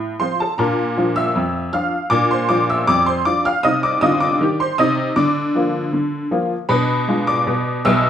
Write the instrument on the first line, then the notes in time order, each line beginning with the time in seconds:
honky-tonk piano
Already playing: A2
0.20 F3 C4 F4 C5 C6
0.40 A4 A5
0.58 A#2 D4 A#4 A#5
0.97 F3 D4 F4
1.16 E5 E6
1.36 F2
1.73 F3 D4 F4 F5 F6
2.10 A#2 D4 D5 D6
2.31 C5 C6
2.49 F3 D4 F4 D5 D6
2.70 E5 E6
2.87 F2 D5 D6
3.06 C5 C6
3.25 F3 D4 F4 D5 D6
3.45 F5 F6
3.63 C3 D#4 D#5 D#6
3.83 D5 D6
4.01 D3 F4 D#5 D#6
4.20 D5 D6
4.41 D#3 G4
4.60 C5 C6
4.78 C3 D#4 D#5 D#6
5.16 D3 D5 D6
5.55 F3 A#3 F4
5.93 D3
6.31 F3 A#3 F4
6.69 B2 D4 B4 B5
7.08 G#3 D4 F4
7.27 D5 D6
7.47 B2
7.85 B1 B2 E5 E6